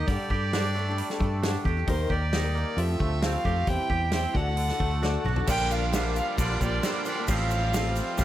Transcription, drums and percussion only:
0.08 kick loud
0.08 open hi-hat medium
0.30 kick medium
0.53 snare loud
0.53 open hi-hat medium
0.98 open hi-hat medium
1.10 snare soft
1.21 kick medium
1.43 snare loud
1.43 open hi-hat medium
1.65 kick medium
1.88 kick loud
1.88 open hi-hat medium
2.10 kick medium
2.33 snare loud
2.33 open hi-hat medium
2.78 open hi-hat medium
3.00 kick medium
3.22 snare loud
3.22 open hi-hat medium
3.45 kick medium
3.67 kick loud
3.67 open hi-hat medium
3.90 kick medium
4.12 snare loud
4.12 open hi-hat medium
4.35 kick medium
4.57 open hi-hat medium
4.69 snare soft
4.80 kick medium
5.03 snare medium
5.26 mid tom medium
5.36 floor tom medium
5.47 kick loud
5.47 crash loud
5.47 crash medium
5.47 shaker loud
5.71 crash medium
5.71 shaker medium
5.93 snare loud
5.93 crash medium
5.93 shaker medium
6.16 crash medium
6.16 shaker medium
6.38 kick loud
6.38 crash medium
6.38 shaker loud
6.61 kick medium
6.61 crash medium
6.61 shaker medium
6.83 snare loud
6.83 crash medium
6.83 shaker medium
7.05 crash medium
7.05 shaker medium
7.28 kick loud
7.28 crash medium
7.28 shaker medium
7.51 crash medium
7.51 shaker medium
7.74 snare loud
7.74 crash medium
7.74 shaker medium
7.96 crash medium
7.96 shaker medium
8.18 kick loud
8.18 crash medium
8.18 shaker loud

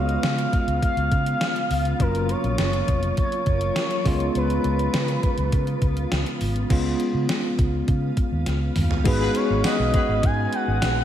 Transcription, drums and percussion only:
0.09 closed hi-hat soft
0.23 snare loud
0.23 closed hi-hat medium
0.38 closed hi-hat soft
0.53 kick medium
0.53 closed hi-hat medium
0.68 closed hi-hat medium
0.83 kick medium
0.83 closed hi-hat medium
0.97 closed hi-hat soft
1.12 kick medium
1.12 closed hi-hat medium
1.26 closed hi-hat medium
1.41 snare loud
1.41 closed hi-hat medium
1.56 closed hi-hat medium
1.71 open hi-hat medium
1.85 closed hi-hat soft
2.00 kick loud
2.00 closed hi-hat medium
2.15 closed hi-hat medium
2.29 closed hi-hat medium
2.44 closed hi-hat soft
2.58 snare loud
2.58 closed hi-hat medium
2.73 closed hi-hat soft
2.88 kick medium
2.88 closed hi-hat medium
3.03 closed hi-hat medium
3.17 kick medium
3.17 closed hi-hat medium
3.32 closed hi-hat soft
3.46 kick medium
3.46 closed hi-hat medium
3.61 closed hi-hat medium
3.76 snare loud
3.76 closed hi-hat medium
3.91 closed hi-hat soft
4.06 kick loud
4.06 open hi-hat medium
4.20 closed hi-hat medium
4.35 closed hi-hat medium
4.50 closed hi-hat medium
4.64 closed hi-hat medium
4.79 closed hi-hat medium
4.94 snare loud
4.94 closed hi-hat medium
5.08 closed hi-hat soft
5.23 kick medium
5.23 closed hi-hat medium
5.38 closed hi-hat medium
5.52 kick medium
5.52 closed hi-hat medium
5.67 closed hi-hat soft
5.82 kick medium
5.82 closed hi-hat medium
5.97 closed hi-hat medium
6.12 snare loud
6.12 closed hi-hat medium
6.26 closed hi-hat soft
6.41 open hi-hat medium
6.56 closed hi-hat soft
6.70 kick loud
6.70 closed hi-hat medium
6.70 crash medium
7.00 closed hi-hat medium
7.29 snare loud
7.29 closed hi-hat medium
7.59 kick loud
7.59 closed hi-hat medium
7.88 kick medium
7.88 closed hi-hat medium
8.17 kick medium
8.17 closed hi-hat medium
8.46 snare medium
8.46 closed hi-hat medium
8.76 mid tom medium
8.76 open hi-hat medium
8.91 floor tom medium
9.05 kick loud
9.05 closed hi-hat medium
9.05 crash loud
9.35 closed hi-hat medium
9.64 snare loud
9.64 closed hi-hat loud
9.64 tambourine medium
9.94 kick loud
9.94 closed hi-hat medium
10.23 kick loud
10.23 closed hi-hat medium
10.53 closed hi-hat medium
10.82 snare loud
10.82 closed hi-hat medium
10.82 tambourine medium

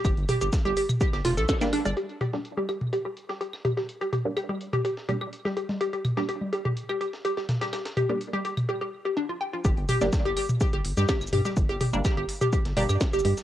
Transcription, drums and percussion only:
0.05 kick loud
0.05 closed hi-hat medium
0.05 claves medium
0.05 shaker medium
0.17 closed hi-hat soft
0.29 closed hi-hat medium
0.29 open hi-hat medium
0.29 high tom medium
0.29 shaker soft
0.41 closed hi-hat soft
0.41 shaker soft
0.53 kick loud
0.53 snare loud
0.53 closed hi-hat medium
0.53 shaker medium
0.65 low conga medium
0.77 closed hi-hat medium
0.77 open hi-hat medium
0.77 shaker soft
0.89 closed hi-hat soft
0.89 high tom medium
0.89 claves medium
0.89 shaker soft
1.01 kick loud
1.01 closed hi-hat medium
1.01 shaker medium
1.13 snare medium
1.25 snare loud
1.25 closed hi-hat medium
1.25 open hi-hat medium
1.25 high tom medium
1.37 snare soft
1.37 shaker soft
1.49 kick loud
1.49 snare loud
1.49 closed hi-hat medium
1.49 shaker medium
1.61 snare loud
1.61 closed hi-hat medium
1.61 closed hi-hat soft
1.61 low conga medium
1.61 shaker soft
1.73 cross-stick medium
1.73 snare soft
1.73 open hi-hat medium
1.73 claves medium
1.85 cross-stick medium
1.85 closed hi-hat medium
1.85 low conga medium
1.85 shaker soft
1.97 closed hi-hat medium
2.09 closed hi-hat soft
2.21 closed hi-hat medium
2.21 high tom medium
2.33 snare soft
2.45 closed hi-hat medium
2.45 shaker soft
2.57 low conga medium
2.69 closed hi-hat medium
2.69 claves medium
2.81 high tom medium
2.81 shaker soft
2.93 closed hi-hat medium
3.17 closed hi-hat medium
3.29 snare medium
3.41 closed hi-hat medium
3.53 snare soft
3.53 claves medium
3.53 shaker soft
3.59 shaker soft
3.65 closed hi-hat medium
3.65 high tom medium
3.77 snare medium
3.89 closed hi-hat medium
3.89 shaker soft
4.01 closed hi-hat soft
4.13 closed hi-hat medium
4.13 high tom medium
4.25 shaker soft
4.37 closed hi-hat medium
4.37 claves medium
4.49 low conga medium
4.61 closed hi-hat medium
4.73 closed hi-hat soft
4.73 high tom medium
4.85 closed hi-hat medium
4.85 shaker soft
4.97 snare medium
5.09 closed hi-hat medium
5.09 high tom medium
5.21 claves medium
5.33 closed hi-hat medium
5.33 shaker soft
5.45 snare soft
5.45 low conga medium
5.45 shaker soft
5.51 shaker soft
5.57 closed hi-hat medium
5.69 snare soft
5.69 low conga medium
5.69 shaker soft
5.81 closed hi-hat medium
5.81 shaker soft
5.93 closed hi-hat soft
6.05 closed hi-hat medium
6.05 high tom medium
6.05 claves medium
6.05 shaker soft
6.17 snare soft
6.29 closed hi-hat medium
6.41 low conga medium
6.53 closed hi-hat medium
6.65 high tom medium
6.77 closed hi-hat medium
6.77 shaker soft
6.89 claves medium
7.01 closed hi-hat medium
7.13 snare medium
7.13 shaker soft
7.25 closed hi-hat medium
7.25 shaker soft
7.37 snare soft
7.37 shaker soft
7.43 shaker soft
7.49 snare loud
7.49 closed hi-hat medium
7.49 high tom medium
7.61 snare loud
7.61 closed hi-hat medium
7.73 snare loud
7.73 closed hi-hat medium
7.73 claves medium
7.73 shaker soft
7.85 snare loud
7.85 closed hi-hat medium
7.97 closed hi-hat medium
7.97 high tom medium
8.09 shaker soft
8.21 closed hi-hat medium
8.21 shaker soft
8.33 low conga medium
8.45 closed hi-hat medium
8.57 closed hi-hat soft
8.57 high tom medium
8.57 claves medium
8.57 shaker soft
9.65 kick loud
9.65 closed hi-hat medium
9.65 shaker medium
9.77 closed hi-hat soft
9.89 closed hi-hat medium
9.89 open hi-hat medium
9.89 high tom medium
9.89 shaker soft
10.01 snare medium
10.01 low conga medium
10.01 shaker soft
10.13 kick loud
10.13 snare loud
10.13 closed hi-hat medium
10.13 shaker medium
10.37 closed hi-hat medium
10.37 open hi-hat medium
10.37 claves medium
10.49 high tom medium
10.49 shaker soft
10.61 kick loud
10.61 closed hi-hat medium
10.61 shaker medium
10.73 closed hi-hat soft
10.85 closed hi-hat medium
10.85 open hi-hat medium
10.97 snare medium
10.97 low conga medium
10.97 shaker soft
11.09 kick loud
11.09 snare loud
11.09 closed hi-hat medium
11.09 shaker medium
11.21 snare soft
11.21 claves medium
11.21 shaker soft
11.27 shaker medium
11.33 closed hi-hat medium
11.33 open hi-hat medium
11.33 high tom medium
11.45 snare medium
11.45 low conga medium
11.45 shaker soft
11.57 kick loud
11.57 closed hi-hat medium
11.57 shaker medium
11.69 closed hi-hat soft
11.81 closed hi-hat medium
11.81 open hi-hat medium
11.81 high tom medium
11.81 shaker soft
11.93 low conga medium
11.93 shaker soft
12.05 kick loud
12.05 snare loud
12.05 closed hi-hat medium
12.05 claves medium
12.05 shaker medium
12.29 closed hi-hat medium
12.29 open hi-hat medium
12.41 closed hi-hat soft
12.41 high tom medium
12.41 shaker soft
12.53 kick loud
12.53 closed hi-hat medium
12.53 shaker medium
12.65 snare medium
12.65 closed hi-hat soft
12.77 closed hi-hat medium
12.77 open hi-hat medium
12.77 high tom medium
12.77 low conga medium
12.89 claves medium
12.89 shaker soft
13.01 kick loud
13.01 snare loud
13.01 closed hi-hat medium
13.01 shaker medium
13.13 snare soft
13.13 shaker soft
13.19 shaker soft
13.25 closed hi-hat medium
13.25 open hi-hat medium
13.25 low conga medium
13.37 snare medium
13.37 shaker soft

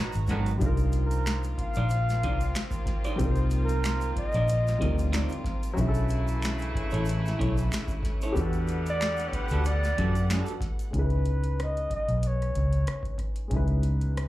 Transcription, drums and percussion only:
0.13 closed hi-hat soft
0.13 shaker soft
0.27 kick loud
0.27 snare soft
0.27 closed hi-hat medium
0.27 shaker soft
0.46 closed hi-hat medium
0.46 shaker soft
0.61 kick loud
0.61 closed hi-hat medium
0.61 shaker medium
0.77 closed hi-hat soft
0.77 shaker soft
0.92 closed hi-hat medium
0.92 shaker soft
1.11 closed hi-hat soft
1.11 shaker medium
1.26 finger snap medium
1.26 snare loud
1.26 closed hi-hat medium
1.26 shaker medium
1.43 closed hi-hat soft
1.43 shaker soft
1.58 kick medium
1.58 closed hi-hat medium
1.74 closed hi-hat medium
1.74 shaker soft
1.89 closed hi-hat medium
1.89 shaker medium
2.09 snare soft
2.09 closed hi-hat soft
2.09 shaker soft
2.23 kick medium
2.23 closed hi-hat medium
2.41 closed hi-hat soft
2.41 shaker medium
2.55 finger snap medium
2.55 finger snap loud
2.55 snare loud
2.55 closed hi-hat medium
2.55 shaker medium
2.71 kick medium
2.71 closed hi-hat soft
2.71 shaker soft
2.86 kick loud
2.86 snare soft
2.86 closed hi-hat medium
3.04 closed hi-hat soft
3.04 shaker soft
3.19 kick loud
3.19 closed hi-hat medium
3.19 shaker medium
3.36 closed hi-hat soft
3.36 shaker soft
3.50 closed hi-hat medium
3.50 shaker soft
3.69 closed hi-hat soft
3.69 shaker soft
3.84 finger snap medium
3.84 snare loud
3.84 closed hi-hat medium
3.84 shaker medium
3.86 finger snap medium
4.01 closed hi-hat soft
4.01 shaker soft
4.16 kick medium
4.16 closed hi-hat medium
4.32 closed hi-hat medium
4.32 shaker soft
4.48 closed hi-hat loud
4.48 shaker medium
4.67 snare soft
4.67 closed hi-hat soft
4.67 shaker soft
4.82 kick medium
4.82 closed hi-hat medium
4.98 closed hi-hat soft
4.98 shaker soft
5.13 finger snap medium
5.13 snare loud
5.13 closed hi-hat medium
5.13 shaker medium
5.29 closed hi-hat soft
5.29 shaker soft
5.44 kick loud
5.44 snare soft
5.44 closed hi-hat medium
5.63 closed hi-hat medium
5.63 shaker soft
5.77 kick loud
5.77 closed hi-hat medium
5.77 shaker medium
5.94 closed hi-hat soft
5.94 shaker soft
6.08 closed hi-hat medium
6.08 shaker soft
6.27 closed hi-hat soft
6.27 shaker soft
6.42 finger snap medium
6.42 snare loud
6.42 closed hi-hat medium
6.42 shaker medium
6.45 finger snap medium
6.58 closed hi-hat soft
6.58 shaker soft
6.75 kick medium
6.75 closed hi-hat medium
6.91 closed hi-hat medium
6.91 shaker soft
7.05 closed hi-hat loud
7.05 shaker medium
7.26 snare soft
7.26 closed hi-hat soft
7.26 shaker soft
7.41 kick medium
7.41 closed hi-hat medium
7.57 closed hi-hat soft
7.57 shaker medium
7.72 finger snap medium
7.72 snare loud
7.72 closed hi-hat medium
7.72 shaker medium
7.74 finger snap loud
7.88 kick medium
7.88 closed hi-hat soft
7.88 shaker soft
8.03 kick loud
8.03 snare soft
8.03 closed hi-hat medium
8.22 closed hi-hat soft
8.22 shaker soft
8.36 kick loud
8.36 closed hi-hat medium
8.36 shaker medium
8.53 closed hi-hat soft
8.53 shaker soft
8.67 closed hi-hat medium
8.67 shaker soft
8.86 closed hi-hat soft
8.86 shaker medium
9.01 finger snap medium
9.01 snare loud
9.01 closed hi-hat medium
9.01 shaker medium
9.03 finger snap medium
9.17 closed hi-hat soft
9.17 shaker soft
9.33 kick medium
9.33 closed hi-hat medium
9.49 closed hi-hat medium
9.49 shaker soft
9.65 closed hi-hat loud
9.65 shaker medium
9.84 snare soft
9.84 closed hi-hat soft
9.84 shaker soft
9.98 kick medium
9.98 closed hi-hat medium
10.15 closed hi-hat soft
10.15 shaker medium
10.30 finger snap medium
10.30 snare loud
10.30 closed hi-hat medium
10.30 shaker medium
10.46 closed hi-hat soft
10.46 shaker soft
10.61 kick loud
10.61 snare soft
10.61 closed hi-hat medium
10.79 closed hi-hat medium
10.79 shaker soft
10.93 kick medium
10.93 closed hi-hat medium
11.10 closed hi-hat soft
11.25 closed hi-hat soft
11.44 closed hi-hat soft
11.60 cross-stick medium
11.60 closed hi-hat medium
11.77 closed hi-hat soft
11.90 kick medium
11.90 closed hi-hat medium
12.09 closed hi-hat soft
12.23 closed hi-hat medium
12.42 cross-stick soft
12.42 closed hi-hat soft
12.55 kick medium
12.55 closed hi-hat medium
12.73 closed hi-hat soft
12.87 cross-stick medium
12.87 closed hi-hat medium
13.03 kick medium
13.03 closed hi-hat soft
13.18 kick medium
13.18 cross-stick soft
13.18 closed hi-hat medium
13.36 closed hi-hat soft
13.51 kick medium
13.51 closed hi-hat medium
13.68 closed hi-hat soft
13.83 closed hi-hat medium
14.01 closed hi-hat soft
14.17 cross-stick medium
14.17 closed hi-hat medium

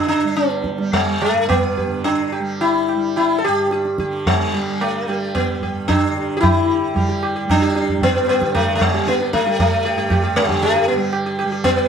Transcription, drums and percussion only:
0.36 tabla te medium
0.50 tabla te medium
0.64 tabla ke medium
0.78 tabla te medium
0.93 tabla tin medium
0.93 tabla ge medium
1.22 tabla na medium
1.50 tabla na medium
1.50 tabla ge medium
1.78 tabla ge soft
2.05 tabla tin medium
2.33 tabla na medium
2.61 tabla na medium
2.89 tabla na medium
3.16 tabla na medium
3.44 tabla na medium
3.71 tabla te medium
3.85 tabla te medium
3.98 tabla ke medium
4.13 tabla te medium
4.26 tabla tin medium
4.26 tabla ge medium
4.81 tabla na medium
5.08 tabla na medium
5.35 tabla na medium
5.35 tabla ge medium
5.63 tabla ge soft
5.89 tabla na medium
5.89 tabla ge medium
6.16 tabla te medium
6.43 tabla na loud
6.43 tabla ge loud
6.96 tabla tin medium
6.96 tabla ge medium
7.23 tabla na medium
7.50 tabla na medium
7.50 tabla ge medium
7.76 tabla te medium
7.89 tabla ge medium
8.02 tabla tin medium
8.02 tabla ge medium
8.28 tabla na medium
8.42 tabla ke medium
8.55 tabla na medium
8.55 tabla ge medium
8.81 tabla ge medium
9.07 tabla te medium
9.20 tabla te medium
9.33 tabla ke medium
9.46 tabla te medium
9.59 tabla tin medium
9.59 tabla ge medium
10.10 tabla na medium
10.10 tabla ge medium
10.36 tabla te medium
10.49 tabla ge medium
10.62 tabla tin medium
11.13 tabla na medium
11.39 tabla na medium
11.64 tabla tin medium
11.64 tabla ge medium

